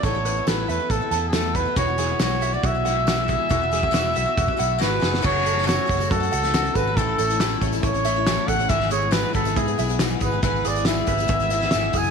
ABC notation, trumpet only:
X:1
M:4/4
L:1/16
Q:1/4=139
K:Emix
V:1 name="Trumpet"
c4 B2 B2 A3- A/2 G/2 A2 B2 | c4 c3 d e8- | e12 B4 | c4 c4 A6 B2 |
A6 z2 c6 f2 | e2 c2 B2 A2 G4 z2 B2 | B2 d2 e8- e2 g2 |]